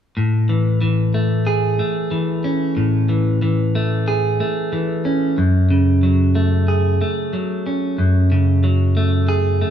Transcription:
0.17 A2
0.49 E3
0.82 E3
1.14 A3
1.47 G#4
1.79 A3
2.11 E3
2.44 C#4
2.77 A2
3.09 E3
3.42 E3
3.75 A3
4.08 G#4
4.40 A3
4.73 E3
5.05 C#4
5.38 F#2
5.71 C#3
6.03 F#3
6.35 A3
6.68 G#4
7.01 A3
7.33 F#3
7.66 C#4
7.98 F#2
8.32 C#3
8.64 F#3
8.97 A3
9.29 G#4
9.62 A3

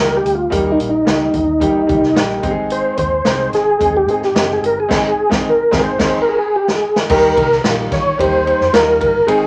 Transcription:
Already playing: C#2 G3 A#3 D#4 G4
0.00 A#4
0.17 G4
0.25 D2, closed hi-hat
0.35 F4
0.50 D#2 G3 A#3 D#4 G4 A#4, kick, closed hi-hat
0.72 D#4
0.80 A#1, closed hi-hat
0.89 D#4
1.05 C#2 G3 A#3 D#4 G4, snare, closed hi-hat
1.33 D#2, kick, closed hi-hat
1.60 G3 A#3 D#4 G4, kick, closed hi-hat
1.87 C#2 G3 A#3 D#4 G4, kick, closed hi-hat
2.01 C2, snare
2.14 A#1 G3 A#3 D#4 G4, snare, closed hi-hat
2.43 G#1 G#3 C4 D#4 G4, kick, closed hi-hat
2.51 G#4
2.70 C5, closed hi-hat
2.97 D#2 C5, kick, closed hi-hat
3.24 C2 G#3 C4 D#4 G#4, snare, closed hi-hat
3.52 G#1 G#4, snare, closed hi-hat
3.79 D#2 G#3 C4 D#4 G#4, kick, closed hi-hat
3.97 G4
4.06 G#2 G#3 C4 D#4 G#4, closed hi-hat
4.11 G#4
4.22 G4, snare
4.34 F#1 G#3 C4 D#4 G4, snare, closed hi-hat
4.53 G#4
4.62 G1 A#4, closed hi-hat
4.80 G#4
4.88 G#1 G#3 C4 D#4 G#4, kick, snare, crash
5.29 G#1 G#3 C4 D#4 G#4, kick, snare
5.49 A#4
5.71 G#1 G#3 C4 D#4 G#4, kick, snare
5.84 C5
5.98 G#1 G#3 C4 D#4 G#4 C5, kick, snare, crash
6.22 A#4
6.29 G#4
6.38 G#4
6.56 G4
6.68 snare
6.75 G#4
6.96 snare
7.09 D#2 D#3 G3 A#3 D#4 G4 A#4, kick, crash
7.37 C2, kick, ride
7.52 snare
7.64 A#1 D#3 G3 A#3 D#4 F4, snare, ride
7.92 D#3 C#5, kick, snare, ride
8.18 D#2 D#3 G3 A#3 D#4 G4 C5, kick, ride
8.44 D#3 G3 A#3 D#4 G4, ride
8.61 F2, snare
8.72 D#2 D#3 G3 A#3 D#4 F4 A#4, snare, ride
9.01 G1, kick, ride
9.27 G#1 D#3 G#3 C4 D#4 G#4, ride

